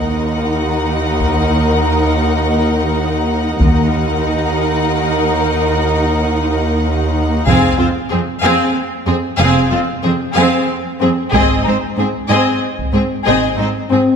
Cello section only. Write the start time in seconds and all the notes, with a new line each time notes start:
Already playing: D#2
3.60 D#2
7.47 F2
7.79 F2
8.11 F2
8.43 F2
9.07 F2
9.40 F2
9.72 F2
10.04 F2
10.36 F2
11.02 F2
11.33 G#2
11.65 G#2
11.97 G#2
12.29 G#2
12.93 G#2
13.26 G#2
13.59 G#2
13.91 G#2